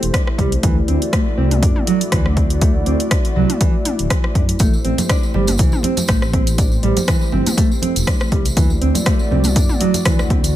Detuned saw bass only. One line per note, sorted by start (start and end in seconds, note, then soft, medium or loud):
0.02 0.10 E1 medium
0.39 0.56 C2 medium
0.63 0.80 D2 loud
0.88 0.97 D2 loud
1.38 1.64 C2 medium
1.62 1.71 F#2 medium
2.12 2.80 D2 medium
2.86 2.95 D2 loud
3.36 3.45 C2 medium
3.99 4.06 D1 medium
4.35 4.52 F#2 medium
4.60 4.77 A1 loud
4.85 4.93 A1 loud
5.34 5.61 G1 medium
5.59 5.68 C2 medium
6.09 6.77 A1 medium
6.83 6.92 A1 loud
7.32 7.41 G1 loud
7.96 8.03 E1 medium
8.32 8.49 C2 medium
8.57 8.74 D2 loud
8.81 8.90 D2 loud
9.31 9.57 C2 medium
9.56 9.65 F#2 medium
10.06 10.56 D2 medium